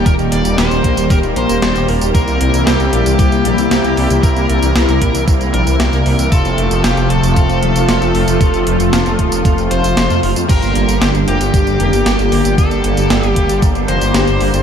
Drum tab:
CC |----------------|----------------|----------------|----------------|
HH |xxxxxxxxxxxxxxox|xxxxxxxxxxxxxxox|xxxxxxxxxxxxxxox|xxxxxxxxxxxxxxox|
TB |xx-xxx-xxx-xxx-x|xx-xxx-xxx-xxx-x|xx-xxx-xxx-xxx-x|xx-xxx-xxx-xxx-x|
SD |----o-------o---|----o-------o---|----o-------o---|----o-------o---|
BD |o-----o-o-------|o-------o-------|o-----o-o-------|o-------o-------|

CC |----------------|x---------------|----------------|
HH |xxxxxxxxxxxxxxox|xxxxxxxxxxxxxxox|xxxxxxxxxxxxxxox|
TB |xx-xxx-xxx-xxx-x|xx-xxx-xxx-xxx-x|xx-xxx-xxx-xxx-x|
SD |----o-------o---|----o-------o---|----o-------o---|
BD |o-----o-o-------|o-------o-------|o-----o-o-------|